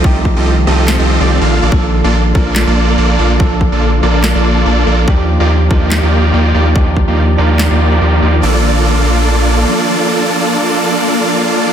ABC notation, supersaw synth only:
X:1
M:4/4
L:1/16
Q:"Swing 16ths" 1/4=143
K:Bb
V:1 name="Supersaw synth"
[CFG] z2 [CFGAe] z2 [CFGAe]3 [CFGAe]2 [CFGAd]2 [B,DFAf]2 [B,DFAd] | [B,DFAd] z2 [B,DFAd] z2 [B,DFAd]3 [B,DFAd]3 [B,DFAd]2 [B,DFAd] z | [B,DFd] z2 [B,DFAd] z2 [B,DFAd]3 [B,DFAd]3 [B,DFAd]2 [B,DFAd] z | [B,EFG] z2 [B,EFGd] z2 [B,EFGd]3 [B,EFGd]3 [B,EFGd]2 [B,EFGd] z |
[B,EFGd] z2 [B,EFGd] z2 [B,EFGd]3 [B,EFGd]3 [B,EFGd]2 [B,EFGd] z | [B,DFAd]16- | [B,DFAd]16 |]